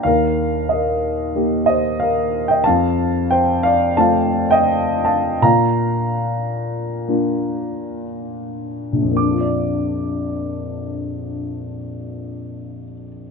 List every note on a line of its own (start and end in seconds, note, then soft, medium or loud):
0.03 2.63 D#2 medium
0.03 0.68 A#4 medium
0.03 0.72 F5 medium
0.69 1.31 D#5 medium
0.73 1.33 A#4 soft
1.36 2.63 A#3 soft
1.36 2.63 D#4 soft
1.36 2.63 G4 soft
1.66 2.00 C5 medium
1.66 1.98 D#5 medium
2.00 2.48 A#4 medium
2.00 2.46 F5 medium
2.48 2.66 D#5 medium
2.48 2.66 G5 medium
2.64 5.39 F2 medium
2.64 3.26 F5 medium
2.64 3.31 A5 medium
3.31 3.62 C5 medium
3.31 3.65 G5 medium
3.63 3.96 D5 medium
3.63 3.99 F5 medium
3.97 5.38 A3 soft
3.97 5.38 C4 soft
3.97 5.39 F4 medium
3.97 4.48 F5 medium
3.97 4.52 A5 medium
4.51 5.02 D#5 medium
4.51 5.07 G5 medium
5.05 5.40 F5 medium
5.05 5.44 A5 medium
5.42 9.12 A#2 medium
5.42 8.03 F5 medium
5.42 8.02 A#5 medium
7.08 9.10 A#3 soft
7.08 9.12 D4 soft
7.08 9.12 F4 soft
8.92 12.84 A#1 soft
9.02 12.94 F2 soft
9.11 13.03 A#3 soft
9.17 13.08 D6 medium
9.22 13.13 D4 soft
9.31 13.23 F4 soft
9.41 13.31 D5 soft